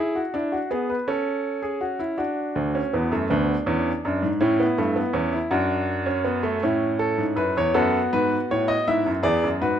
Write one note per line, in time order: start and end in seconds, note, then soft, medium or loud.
0.00 0.20 E4 medium
0.00 0.15 G#4 medium
0.15 0.34 F#4 medium
0.34 0.57 D4 medium
0.34 0.52 E4 medium
0.52 0.70 F#4 medium
0.71 0.94 B3 medium
0.71 0.89 G#4 medium
0.90 1.08 B4 medium
1.08 2.16 C#4 medium
1.08 1.62 A4 medium
1.62 1.81 G#4 medium
1.81 2.00 F#4 medium
1.99 2.18 E4 medium
2.18 2.73 D4 medium
2.18 3.27 F#4 medium
2.56 2.79 D2 medium
2.75 2.93 C#4 medium
2.93 3.12 E2 medium
2.93 3.12 B3 medium
3.12 3.30 F#2 medium
3.12 3.30 A3 medium
3.30 3.53 D2 medium
3.30 3.53 B3 medium
3.30 4.03 D4 medium
3.66 3.90 E2 medium
3.66 3.90 C#4 medium
4.05 4.22 F#2 medium
4.05 4.27 D4 medium
4.22 4.40 G#2 medium
4.40 4.64 A2 medium
4.40 4.59 C#4 medium
4.40 5.31 E4 medium
4.60 4.77 B3 medium
4.78 5.01 G2 medium
4.78 4.96 A3 medium
4.96 5.14 B3 medium
5.13 5.37 E2 medium
5.13 5.32 C#4 medium
5.33 5.51 E4 medium
5.51 6.59 F#2 medium
5.51 6.05 D4 medium
5.51 6.59 F#4 medium
6.06 6.25 C#4 medium
6.25 6.43 B3 medium
6.43 6.62 A3 medium
6.63 7.18 A2 medium
6.63 7.72 C#4 medium
6.63 7.72 E4 medium
6.99 7.23 A4 medium
7.18 7.37 G#2 medium
7.36 7.55 F#2 medium
7.36 7.55 B4 medium
7.57 7.75 E2 medium
7.57 7.75 C#5 medium
7.74 7.98 F#2 medium
7.74 9.80 B3 medium
7.74 8.84 F#4 medium
7.74 7.98 A4 medium
8.13 8.36 G#2 medium
8.13 8.36 B4 medium
8.51 8.74 A2 medium
8.51 8.69 C#5 medium
8.68 8.86 D#5 medium
8.88 9.06 G#2 medium
8.88 9.11 E4 medium
8.88 9.11 E5 medium
9.06 9.24 F#2 medium
9.23 9.42 E2 medium
9.23 9.47 G#4 medium
9.23 9.47 D5 medium
9.44 9.62 F#2 medium
9.61 9.80 G#2 medium
9.61 9.80 F#4 medium
9.61 9.80 B4 medium